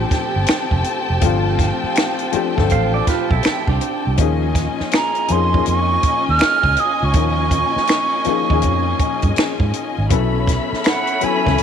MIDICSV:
0, 0, Header, 1, 8, 480
1, 0, Start_track
1, 0, Tempo, 740741
1, 791, Time_signature, 4, 2, 24, 8
1, 7535, End_track
2, 0, Start_track
2, 0, Title_t, "Flute"
2, 0, Program_c, 0, 73
2, 3208, Note_on_c, 0, 82, 86
2, 3448, Note_on_c, 0, 84, 84
2, 3457, Note_off_c, 0, 82, 0
2, 3679, Note_off_c, 0, 84, 0
2, 3689, Note_on_c, 0, 85, 90
2, 4046, Note_off_c, 0, 85, 0
2, 4081, Note_on_c, 0, 89, 108
2, 4406, Note_on_c, 0, 87, 101
2, 4416, Note_off_c, 0, 89, 0
2, 4565, Note_on_c, 0, 85, 94
2, 4574, Note_off_c, 0, 87, 0
2, 5994, Note_off_c, 0, 85, 0
2, 7045, Note_on_c, 0, 78, 85
2, 7284, Note_on_c, 0, 80, 88
2, 7294, Note_off_c, 0, 78, 0
2, 7535, Note_off_c, 0, 80, 0
2, 7535, End_track
3, 0, Start_track
3, 0, Title_t, "String section"
3, 0, Program_c, 1, 48
3, 0, Note_on_c, 1, 60, 78
3, 0, Note_on_c, 1, 67, 68
3, 0, Note_on_c, 1, 79, 79
3, 0, Note_on_c, 1, 81, 83
3, 2685, Note_off_c, 1, 67, 0
3, 2688, Note_off_c, 1, 79, 0
3, 2689, Note_off_c, 1, 60, 0
3, 2689, Note_off_c, 1, 81, 0
3, 2708, Note_on_c, 1, 65, 70
3, 2710, Note_on_c, 1, 80, 88
3, 2712, Note_on_c, 1, 61, 74
3, 2713, Note_on_c, 1, 75, 76
3, 6523, Note_off_c, 1, 65, 0
3, 6524, Note_off_c, 1, 80, 0
3, 6525, Note_off_c, 1, 61, 0
3, 6526, Note_off_c, 1, 75, 0
3, 6552, Note_on_c, 1, 69, 68
3, 6552, Note_on_c, 1, 76, 68
3, 6554, Note_on_c, 1, 83, 96
3, 6557, Note_on_c, 1, 61, 84
3, 7535, Note_off_c, 1, 61, 0
3, 7535, Note_off_c, 1, 69, 0
3, 7535, Note_off_c, 1, 76, 0
3, 7535, Note_off_c, 1, 83, 0
3, 7535, End_track
4, 0, Start_track
4, 0, Title_t, "Clean electric guitar"
4, 0, Program_c, 2, 27
4, 1762, Note_on_c, 2, 72, 61
4, 1762, Note_on_c, 2, 77, 62
4, 1901, Note_off_c, 2, 72, 0
4, 1901, Note_off_c, 2, 77, 0
4, 1906, Note_on_c, 2, 74, 76
4, 1915, Note_on_c, 2, 69, 65
4, 1988, Note_off_c, 2, 74, 0
4, 1992, Note_off_c, 2, 69, 0
4, 1995, Note_on_c, 2, 71, 75
4, 2000, Note_on_c, 2, 65, 68
4, 2137, Note_off_c, 2, 71, 0
4, 2140, Note_off_c, 2, 65, 0
4, 2146, Note_on_c, 2, 69, 78
4, 2150, Note_on_c, 2, 64, 65
4, 2373, Note_off_c, 2, 69, 0
4, 2375, Note_off_c, 2, 64, 0
4, 2393, Note_on_c, 2, 67, 69
4, 2397, Note_on_c, 2, 62, 60
4, 2699, Note_off_c, 2, 67, 0
4, 2701, Note_off_c, 2, 62, 0
4, 7535, End_track
5, 0, Start_track
5, 0, Title_t, "Upright piano"
5, 0, Program_c, 3, 0
5, 0, Control_c, 3, 64, 127
5, 0, Note_on_c, 3, 53, 82
5, 0, Note_on_c, 3, 57, 70
5, 0, Note_on_c, 3, 60, 71
5, 0, Note_on_c, 3, 62, 72
5, 0, Note_on_c, 3, 67, 90
5, 0, Note_on_c, 3, 69, 85
5, 0, Note_on_c, 3, 71, 53
5, 516, Note_off_c, 3, 53, 0
5, 519, Note_off_c, 3, 57, 0
5, 524, Note_off_c, 3, 60, 0
5, 527, Note_off_c, 3, 62, 0
5, 528, Note_off_c, 3, 69, 0
5, 783, Note_on_c, 3, 53, 86
5, 794, Note_on_c, 3, 57, 72
5, 798, Note_on_c, 3, 60, 69
5, 806, Note_on_c, 3, 62, 69
5, 811, Note_on_c, 3, 65, 98
5, 1414, Note_off_c, 3, 53, 0
5, 1420, Note_off_c, 3, 57, 0
5, 1422, Note_off_c, 3, 60, 0
5, 1426, Note_off_c, 3, 62, 0
5, 1428, Note_off_c, 3, 65, 0
5, 1503, Note_on_c, 3, 53, 89
5, 1508, Note_on_c, 3, 57, 77
5, 1515, Note_on_c, 3, 60, 80
5, 1523, Note_on_c, 3, 62, 79
5, 1527, Note_off_c, 3, 67, 0
5, 1527, Note_on_c, 3, 67, 92
5, 1633, Note_off_c, 3, 53, 0
5, 1635, Note_off_c, 3, 57, 0
5, 1639, Note_off_c, 3, 60, 0
5, 1643, Note_off_c, 3, 62, 0
5, 1645, Note_off_c, 3, 67, 0
5, 1658, Note_on_c, 3, 53, 82
5, 1663, Note_on_c, 3, 57, 79
5, 1670, Note_on_c, 3, 60, 82
5, 1676, Note_on_c, 3, 62, 76
5, 1682, Note_on_c, 3, 69, 94
5, 2435, Note_off_c, 3, 53, 0
5, 2438, Note_off_c, 3, 57, 0
5, 2441, Note_off_c, 3, 60, 0
5, 2444, Note_off_c, 3, 62, 0
5, 2447, Note_off_c, 3, 69, 0
5, 2704, Note_on_c, 3, 53, 75
5, 2712, Note_on_c, 3, 58, 72
5, 2719, Control_c, 3, 64, 0
5, 2720, Note_on_c, 3, 61, 76
5, 2721, Note_off_c, 3, 71, 0
5, 2726, Note_on_c, 3, 63, 73
5, 2731, Note_on_c, 3, 68, 83
5, 2816, Control_c, 3, 64, 127
5, 3335, Note_off_c, 3, 53, 0
5, 3338, Note_off_c, 3, 58, 0
5, 3343, Note_off_c, 3, 61, 0
5, 3346, Note_off_c, 3, 63, 0
5, 3348, Note_off_c, 3, 68, 0
5, 3426, Note_on_c, 3, 53, 73
5, 3433, Note_on_c, 3, 58, 63
5, 3440, Note_on_c, 3, 61, 61
5, 3446, Note_on_c, 3, 63, 67
5, 3452, Note_on_c, 3, 68, 75
5, 3554, Note_off_c, 3, 53, 0
5, 3558, Note_off_c, 3, 58, 0
5, 3562, Note_off_c, 3, 61, 0
5, 3565, Note_off_c, 3, 63, 0
5, 3568, Note_off_c, 3, 68, 0
5, 3578, Note_on_c, 3, 53, 68
5, 3586, Note_on_c, 3, 58, 68
5, 3592, Note_on_c, 3, 61, 61
5, 3597, Note_on_c, 3, 63, 62
5, 3603, Note_on_c, 3, 68, 74
5, 4355, Note_off_c, 3, 53, 0
5, 4359, Note_off_c, 3, 58, 0
5, 4362, Note_off_c, 3, 61, 0
5, 4365, Note_off_c, 3, 63, 0
5, 4368, Note_off_c, 3, 68, 0
5, 4623, Note_on_c, 3, 53, 70
5, 4629, Note_on_c, 3, 58, 65
5, 4636, Note_on_c, 3, 61, 64
5, 4644, Note_on_c, 3, 63, 63
5, 4650, Note_on_c, 3, 70, 69
5, 5254, Note_off_c, 3, 53, 0
5, 5257, Note_off_c, 3, 58, 0
5, 5261, Note_off_c, 3, 61, 0
5, 5265, Note_off_c, 3, 63, 0
5, 5268, Note_off_c, 3, 70, 0
5, 5347, Note_on_c, 3, 53, 92
5, 5355, Note_on_c, 3, 58, 85
5, 5358, Note_on_c, 3, 61, 76
5, 5368, Note_on_c, 3, 63, 81
5, 5372, Note_on_c, 3, 68, 93
5, 5475, Note_off_c, 3, 53, 0
5, 5479, Note_off_c, 3, 58, 0
5, 5481, Note_off_c, 3, 61, 0
5, 5485, Note_off_c, 3, 63, 0
5, 5488, Note_off_c, 3, 68, 0
5, 5498, Note_on_c, 3, 53, 87
5, 5504, Note_on_c, 3, 58, 75
5, 5511, Note_on_c, 3, 61, 77
5, 5516, Note_on_c, 3, 63, 79
5, 5525, Note_on_c, 3, 68, 100
5, 6275, Note_off_c, 3, 53, 0
5, 6278, Note_off_c, 3, 58, 0
5, 6281, Note_off_c, 3, 61, 0
5, 6284, Note_off_c, 3, 63, 0
5, 6289, Note_off_c, 3, 68, 0
5, 6541, Note_on_c, 3, 54, 78
5, 6548, Note_on_c, 3, 59, 81
5, 6554, Note_on_c, 3, 61, 81
5, 6557, Control_c, 3, 64, 0
5, 6561, Note_on_c, 3, 64, 71
5, 6567, Note_on_c, 3, 69, 91
5, 6679, Control_c, 3, 64, 127
5, 7173, Note_off_c, 3, 54, 0
5, 7177, Note_off_c, 3, 59, 0
5, 7180, Note_off_c, 3, 61, 0
5, 7183, Note_off_c, 3, 64, 0
5, 7186, Note_off_c, 3, 69, 0
5, 7264, Note_on_c, 3, 54, 80
5, 7271, Note_on_c, 3, 59, 66
5, 7279, Note_on_c, 3, 61, 64
5, 7284, Note_on_c, 3, 64, 68
5, 7291, Note_on_c, 3, 69, 75
5, 7393, Note_off_c, 3, 54, 0
5, 7397, Note_off_c, 3, 59, 0
5, 7401, Note_off_c, 3, 61, 0
5, 7403, Note_off_c, 3, 64, 0
5, 7407, Note_off_c, 3, 69, 0
5, 7419, Note_on_c, 3, 54, 74
5, 7426, Note_on_c, 3, 59, 66
5, 7433, Note_on_c, 3, 61, 70
5, 7439, Note_on_c, 3, 64, 63
5, 7445, Note_on_c, 3, 69, 78
5, 7535, Note_off_c, 3, 54, 0
5, 7535, Note_off_c, 3, 59, 0
5, 7535, Note_off_c, 3, 61, 0
5, 7535, Note_off_c, 3, 64, 0
5, 7535, Note_off_c, 3, 69, 0
5, 7535, End_track
6, 0, Start_track
6, 0, Title_t, "Fingered electric bass"
6, 0, Program_c, 4, 33
6, 233, Note_on_c, 4, 31, 78
6, 297, Note_off_c, 4, 31, 0
6, 464, Note_on_c, 4, 29, 88
6, 532, Note_off_c, 4, 29, 0
6, 713, Note_on_c, 4, 29, 90
6, 778, Note_off_c, 4, 29, 0
6, 795, Note_on_c, 4, 31, 107
6, 1101, Note_off_c, 4, 31, 0
6, 1676, Note_on_c, 4, 31, 92
6, 1739, Note_off_c, 4, 31, 0
6, 1764, Note_on_c, 4, 33, 84
6, 1947, Note_off_c, 4, 33, 0
6, 2146, Note_on_c, 4, 35, 88
6, 2213, Note_off_c, 4, 35, 0
6, 2384, Note_on_c, 4, 36, 94
6, 2452, Note_off_c, 4, 36, 0
6, 2637, Note_on_c, 4, 36, 88
6, 2700, Note_off_c, 4, 36, 0
6, 2714, Note_on_c, 4, 39, 88
6, 3020, Note_off_c, 4, 39, 0
6, 3436, Note_on_c, 4, 41, 79
6, 3622, Note_off_c, 4, 41, 0
6, 3679, Note_on_c, 4, 41, 90
6, 3864, Note_off_c, 4, 41, 0
6, 4075, Note_on_c, 4, 39, 87
6, 4139, Note_off_c, 4, 39, 0
6, 4303, Note_on_c, 4, 37, 80
6, 4372, Note_off_c, 4, 37, 0
6, 4553, Note_on_c, 4, 37, 93
6, 4618, Note_off_c, 4, 37, 0
6, 4631, Note_on_c, 4, 39, 99
6, 4939, Note_off_c, 4, 39, 0
6, 5512, Note_on_c, 4, 39, 87
6, 5603, Note_off_c, 4, 39, 0
6, 5603, Note_on_c, 4, 41, 88
6, 5786, Note_off_c, 4, 41, 0
6, 5986, Note_on_c, 4, 43, 82
6, 6053, Note_off_c, 4, 43, 0
6, 6222, Note_on_c, 4, 44, 88
6, 6291, Note_off_c, 4, 44, 0
6, 6469, Note_on_c, 4, 32, 88
6, 6535, Note_off_c, 4, 32, 0
6, 6553, Note_on_c, 4, 35, 94
6, 6860, Note_off_c, 4, 35, 0
6, 7435, Note_on_c, 4, 37, 93
6, 7499, Note_off_c, 4, 37, 0
6, 7535, End_track
7, 0, Start_track
7, 0, Title_t, "Muted fingered electric bass strokes"
7, 1189, Note_on_c, 9, 29, 43
7, 1254, Note_off_c, 9, 29, 0
7, 1515, Note_on_c, 9, 29, 37
7, 1580, Note_off_c, 9, 29, 0
7, 3115, Note_on_c, 9, 29, 42
7, 3179, Note_off_c, 9, 29, 0
7, 4160, Note_on_c, 9, 29, 49
7, 4225, Note_off_c, 9, 29, 0
7, 5030, Note_on_c, 9, 29, 44
7, 5095, Note_off_c, 9, 29, 0
7, 5355, Note_on_c, 9, 29, 45
7, 5420, Note_off_c, 9, 29, 0
7, 6075, Note_on_c, 9, 29, 44
7, 6140, Note_off_c, 9, 29, 0
7, 6950, Note_on_c, 9, 29, 43
7, 7015, Note_off_c, 9, 29, 0
7, 7278, Note_on_c, 9, 29, 42
7, 7343, Note_off_c, 9, 29, 0
7, 7535, End_track
8, 0, Start_track
8, 0, Title_t, "Drums"
8, 72, Note_on_c, 9, 36, 96
8, 73, Note_on_c, 9, 42, 71
8, 85, Note_on_c, 9, 38, 42
8, 136, Note_off_c, 9, 36, 0
8, 138, Note_off_c, 9, 42, 0
8, 150, Note_off_c, 9, 38, 0
8, 301, Note_on_c, 9, 42, 75
8, 315, Note_on_c, 9, 26, 82
8, 319, Note_on_c, 9, 38, 100
8, 366, Note_off_c, 9, 42, 0
8, 380, Note_off_c, 9, 26, 0
8, 383, Note_off_c, 9, 38, 0
8, 461, Note_on_c, 9, 36, 82
8, 526, Note_off_c, 9, 36, 0
8, 547, Note_on_c, 9, 42, 70
8, 611, Note_off_c, 9, 42, 0
8, 787, Note_on_c, 9, 42, 89
8, 790, Note_on_c, 9, 36, 113
8, 851, Note_off_c, 9, 42, 0
8, 855, Note_off_c, 9, 36, 0
8, 1029, Note_on_c, 9, 36, 104
8, 1032, Note_on_c, 9, 42, 71
8, 1040, Note_on_c, 9, 38, 35
8, 1094, Note_off_c, 9, 36, 0
8, 1097, Note_off_c, 9, 42, 0
8, 1105, Note_off_c, 9, 38, 0
8, 1267, Note_on_c, 9, 42, 80
8, 1280, Note_on_c, 9, 26, 78
8, 1283, Note_on_c, 9, 38, 89
8, 1332, Note_off_c, 9, 42, 0
8, 1345, Note_off_c, 9, 26, 0
8, 1348, Note_off_c, 9, 38, 0
8, 1417, Note_on_c, 9, 42, 46
8, 1482, Note_off_c, 9, 42, 0
8, 1507, Note_on_c, 9, 42, 66
8, 1571, Note_off_c, 9, 42, 0
8, 1671, Note_on_c, 9, 36, 84
8, 1675, Note_on_c, 9, 38, 35
8, 1736, Note_off_c, 9, 36, 0
8, 1740, Note_off_c, 9, 38, 0
8, 1747, Note_on_c, 9, 42, 81
8, 1761, Note_on_c, 9, 36, 89
8, 1812, Note_off_c, 9, 42, 0
8, 1826, Note_off_c, 9, 36, 0
8, 1990, Note_on_c, 9, 42, 67
8, 1991, Note_on_c, 9, 36, 88
8, 2002, Note_on_c, 9, 38, 40
8, 2055, Note_off_c, 9, 42, 0
8, 2056, Note_off_c, 9, 36, 0
8, 2067, Note_off_c, 9, 38, 0
8, 2143, Note_on_c, 9, 36, 88
8, 2207, Note_off_c, 9, 36, 0
8, 2221, Note_on_c, 9, 42, 76
8, 2236, Note_on_c, 9, 26, 70
8, 2239, Note_on_c, 9, 38, 92
8, 2286, Note_off_c, 9, 42, 0
8, 2300, Note_off_c, 9, 26, 0
8, 2304, Note_off_c, 9, 38, 0
8, 2382, Note_on_c, 9, 36, 86
8, 2446, Note_off_c, 9, 36, 0
8, 2469, Note_on_c, 9, 42, 64
8, 2534, Note_off_c, 9, 42, 0
8, 2706, Note_on_c, 9, 42, 92
8, 2711, Note_on_c, 9, 36, 112
8, 2771, Note_off_c, 9, 42, 0
8, 2776, Note_off_c, 9, 36, 0
8, 2949, Note_on_c, 9, 36, 97
8, 2951, Note_on_c, 9, 42, 66
8, 2959, Note_on_c, 9, 38, 36
8, 3014, Note_off_c, 9, 36, 0
8, 3016, Note_off_c, 9, 42, 0
8, 3024, Note_off_c, 9, 38, 0
8, 3111, Note_on_c, 9, 38, 32
8, 3176, Note_off_c, 9, 38, 0
8, 3185, Note_on_c, 9, 42, 79
8, 3198, Note_on_c, 9, 26, 78
8, 3201, Note_on_c, 9, 38, 97
8, 3250, Note_off_c, 9, 42, 0
8, 3263, Note_off_c, 9, 26, 0
8, 3266, Note_off_c, 9, 38, 0
8, 3336, Note_on_c, 9, 42, 44
8, 3401, Note_off_c, 9, 42, 0
8, 3424, Note_on_c, 9, 42, 70
8, 3489, Note_off_c, 9, 42, 0
8, 3591, Note_on_c, 9, 36, 82
8, 3656, Note_off_c, 9, 36, 0
8, 3666, Note_on_c, 9, 42, 79
8, 3731, Note_off_c, 9, 42, 0
8, 3907, Note_on_c, 9, 42, 72
8, 3910, Note_on_c, 9, 36, 96
8, 3972, Note_off_c, 9, 42, 0
8, 3975, Note_off_c, 9, 36, 0
8, 4140, Note_on_c, 9, 42, 67
8, 4154, Note_on_c, 9, 26, 78
8, 4157, Note_on_c, 9, 38, 95
8, 4204, Note_off_c, 9, 42, 0
8, 4219, Note_off_c, 9, 26, 0
8, 4222, Note_off_c, 9, 38, 0
8, 4299, Note_on_c, 9, 36, 92
8, 4364, Note_off_c, 9, 36, 0
8, 4385, Note_on_c, 9, 42, 73
8, 4449, Note_off_c, 9, 42, 0
8, 4623, Note_on_c, 9, 42, 88
8, 4628, Note_on_c, 9, 36, 112
8, 4688, Note_off_c, 9, 42, 0
8, 4693, Note_off_c, 9, 36, 0
8, 4866, Note_on_c, 9, 36, 104
8, 4868, Note_on_c, 9, 42, 67
8, 4931, Note_off_c, 9, 36, 0
8, 4933, Note_off_c, 9, 42, 0
8, 5035, Note_on_c, 9, 38, 34
8, 5099, Note_off_c, 9, 38, 0
8, 5102, Note_on_c, 9, 42, 78
8, 5115, Note_on_c, 9, 26, 68
8, 5119, Note_on_c, 9, 38, 92
8, 5167, Note_off_c, 9, 42, 0
8, 5180, Note_off_c, 9, 26, 0
8, 5183, Note_off_c, 9, 38, 0
8, 5343, Note_on_c, 9, 42, 72
8, 5408, Note_off_c, 9, 42, 0
8, 5509, Note_on_c, 9, 36, 86
8, 5574, Note_off_c, 9, 36, 0
8, 5584, Note_on_c, 9, 42, 75
8, 5598, Note_on_c, 9, 36, 81
8, 5649, Note_off_c, 9, 42, 0
8, 5663, Note_off_c, 9, 36, 0
8, 5828, Note_on_c, 9, 42, 72
8, 5829, Note_on_c, 9, 36, 89
8, 5893, Note_off_c, 9, 42, 0
8, 5894, Note_off_c, 9, 36, 0
8, 5976, Note_on_c, 9, 42, 43
8, 5982, Note_on_c, 9, 36, 88
8, 6041, Note_off_c, 9, 42, 0
8, 6046, Note_off_c, 9, 36, 0
8, 6066, Note_on_c, 9, 42, 76
8, 6080, Note_on_c, 9, 26, 80
8, 6083, Note_on_c, 9, 38, 98
8, 6131, Note_off_c, 9, 42, 0
8, 6145, Note_off_c, 9, 26, 0
8, 6148, Note_off_c, 9, 38, 0
8, 6219, Note_on_c, 9, 36, 90
8, 6284, Note_off_c, 9, 36, 0
8, 6308, Note_on_c, 9, 42, 71
8, 6373, Note_off_c, 9, 42, 0
8, 6546, Note_on_c, 9, 42, 89
8, 6548, Note_on_c, 9, 36, 112
8, 6611, Note_off_c, 9, 42, 0
8, 6613, Note_off_c, 9, 36, 0
8, 6787, Note_on_c, 9, 36, 102
8, 6794, Note_on_c, 9, 42, 65
8, 6802, Note_on_c, 9, 38, 36
8, 6852, Note_off_c, 9, 36, 0
8, 6859, Note_off_c, 9, 42, 0
8, 6867, Note_off_c, 9, 38, 0
8, 6957, Note_on_c, 9, 38, 36
8, 7022, Note_off_c, 9, 38, 0
8, 7024, Note_on_c, 9, 42, 77
8, 7038, Note_on_c, 9, 26, 74
8, 7041, Note_on_c, 9, 38, 102
8, 7089, Note_off_c, 9, 42, 0
8, 7102, Note_off_c, 9, 26, 0
8, 7106, Note_off_c, 9, 38, 0
8, 7174, Note_on_c, 9, 42, 46
8, 7238, Note_off_c, 9, 42, 0
8, 7264, Note_on_c, 9, 42, 69
8, 7329, Note_off_c, 9, 42, 0
8, 7429, Note_on_c, 9, 36, 85
8, 7432, Note_on_c, 9, 38, 35
8, 7494, Note_off_c, 9, 36, 0
8, 7497, Note_off_c, 9, 38, 0
8, 7505, Note_on_c, 9, 42, 71
8, 7535, Note_off_c, 9, 42, 0
8, 7535, End_track
0, 0, End_of_file